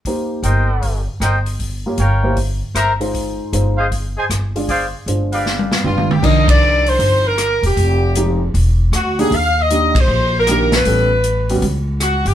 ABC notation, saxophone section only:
X:1
M:4/4
L:1/8
Q:"Swing" 1/4=156
K:Cm
V:1 name="Saxophone section"
z8 | z8 | z8 | z6 F G |
e d2 c2 B2 G- | G3 z3 ^F A | f e2 c2 B2 =B- | =B3 z3 ^F G |]